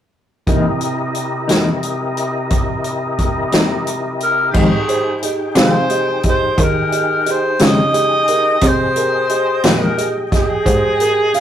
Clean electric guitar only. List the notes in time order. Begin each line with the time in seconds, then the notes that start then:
0.47 C3 E3 A#3 D#4
1.48 C3 E3 A#3 D#4
3.51 C3 E3 A#3 D#4
4.54 F2 D#3 G#3 C4
5.55 F2 D#3 G#3 C4
7.60 F2 D#3 G#3 C4
9.65 F2 D#3 G#3 C4